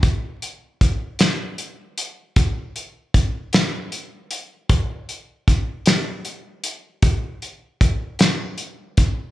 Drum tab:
HH |xxxxxx|xxxxxx|xxxxxx|xxxxxx|
SD |---o--|---o--|---o--|---o--|
BD |o-o---|o-o---|o-o---|o-o--o|